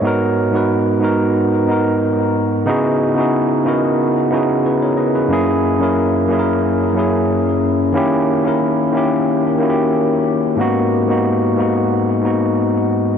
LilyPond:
\new Staff \with { instrumentName = "Tine electric piano" } { \time 4/4 \key gis \minor \tempo 4 = 91 << { cis''16 r2. r8. | r2. <gis' b'>16 <ais' cis''>16 <b' dis''>16 <gis' b'>16~ | <gis' b'>16 r2. r8. | r1 |
r1 | } \\ { <gis, b dis' fis' ais'>8. <gis, b dis' fis' b'>8. <gis, b dis' fis' ais'>8. r16 <gis, b dis' fis' ais'>4~ <gis, b dis' fis' ais'>16 r16 | <cis b dis' e' fis' gis'>8. <cis b dis' e' fis' gis'>8. <cis b dis' e' fis' ais'>8. r16 <cis b dis' e' fis' gis'>4~ <cis b dis' e' fis' gis'>16 r16 | <fis, ais cis' e' gis'>8. <fis, ais cis' e' ais'>8. <fis, ais cis' e' gis' ais'>8. r16 <fis, ais cis' e' gis'>4~ <fis, ais cis' e' gis'>16 r16 | <dis ais cis' e' g'>8. <dis ais cis' e' ais'>8. <dis ais cis' e' g'>8. r16 <dis ais cis' e' fis' g'>4~ <dis ais cis' e' fis' g'>16 r16 |
<gis, ais b dis' fis'>8. <gis, ais b dis' fis'>8. <gis, ais b dis' fis'>8. r16 <gis, ais b dis' fis'>4~ <gis, ais b dis' fis'>16 r16 | } >> }